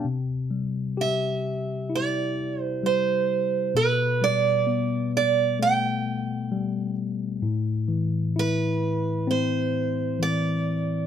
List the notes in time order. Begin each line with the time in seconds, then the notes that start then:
0.05 C3
0.51 G3
0.97 G4 E5
1.90 E4
1.95 D5
2.61 C5
2.83 G3 C5
3.75 B2 B4
4.22 G3 D5
4.67 B3
5.17 D5
5.59 A3 G5
6.52 G3
7.42 A2
7.88 E3
8.36 E4 B4
9.27 C4 C5
10.19 E3 D5